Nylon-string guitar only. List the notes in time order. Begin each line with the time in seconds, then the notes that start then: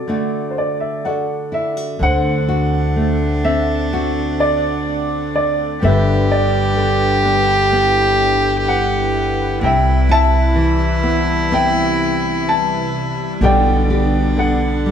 0.07 D3 A3 D4 F#4
1.05 D4 F#4
1.52 E4
1.77 F#4
1.99 D3
2.48 F#4
2.96 A3
3.45 C4
3.92 C4 F#4
5.82 G2 D3 B3 D4
6.76 D3
7.25 B3
7.72 B3 D4
9.61 C3
10.09 E4
10.55 E3
11.03 B3
11.52 B3 C4 E4
13.41 B2 D3 G3 B3 G4
13.90 G4
14.37 D3
14.86 G3